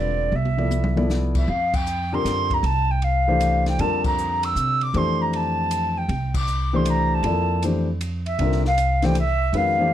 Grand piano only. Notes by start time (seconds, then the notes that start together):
Already playing: D3 G3 C4 F4 B4
0.57 F3 B3 E4 A4 D5
0.96 F3 B3 E4 A4 D5
2.13 D3 C4 F4 G4 A#4
3.27 E3 A3 D4 G4 C5
3.79 D3 G3 C4 F4 A#4
4.95 E3 A3 D4 G4 C5
6.73 E3 A3 D4 G4 C5
7.24 F3 A#3 E4 A4 D5
7.64 E3 A3 D4 G4 C5
8.40 D3 G3 C4 F4 A#4
9.03 E3 A3 D4 G4 C5
9.53 D#3 G#3 C#4 F#4 B4
9.79 E3 A3 D4 G4 C5